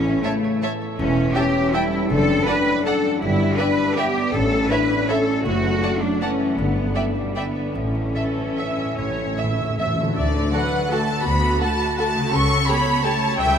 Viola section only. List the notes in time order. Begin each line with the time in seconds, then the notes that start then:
0.24 C#5
0.63 C#5
1.35 E5
1.74 E5
2.47 D5
2.86 D5
3.58 D5
3.97 D5
4.71 C#5
5.09 C#5
5.82 D5
6.22 D5
6.95 D5
7.36 D5
8.15 A4
8.58 E5
8.98 C#5
9.38 E5
9.79 E5
10.54 B4
10.91 A4
11.26 F#4
12.33 A4
12.68 C#5
13.05 C#5
13.39 E5